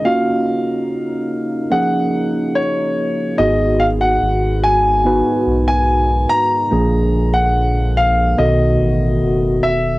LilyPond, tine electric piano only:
<<
  \new Staff \with { instrumentName = "Tine electric piano" } { \time 4/4 \key ges \major \tempo 4 = 72 <bes des' f' ges'>2 <f bes des' aes'>2 | <ces' ees' ges' aes'>2 <ces' ees' ges' ces''>2 | <f bes d' aes'>2 <dis b fis' a'>2 | }
  \new Staff \with { instrumentName = "Tine electric piano" } { \clef bass \time 4/4 \key ges \major r1 | aes,4. r2 r8 | bes,4. r8 b,4. r8 | }
>>